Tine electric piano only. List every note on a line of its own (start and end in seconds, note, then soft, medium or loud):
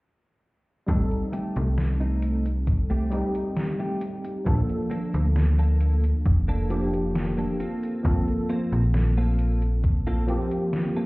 0.86 3.06 G3 medium
0.86 3.07 C4 medium
0.86 3.07 D#4 medium
0.86 3.08 A4 loud
3.10 4.40 G3 medium
3.10 4.41 C4 medium
3.10 4.41 D#4 medium
3.10 4.42 G4 loud
4.45 6.64 F3 medium
4.45 6.65 A#3 medium
4.45 6.65 D4 medium
4.45 6.66 A4 loud
6.70 7.57 F3 medium
6.70 7.57 A#3 medium
6.70 7.57 D4 medium
6.70 7.58 G4 loud
8.03 10.23 F3 loud
8.03 10.23 A#3 medium
8.03 10.24 C4 medium
8.03 10.24 A4 loud
10.27 11.06 F3 loud
10.27 11.06 A#3 medium
10.27 11.06 C4 medium
10.27 11.06 G4 loud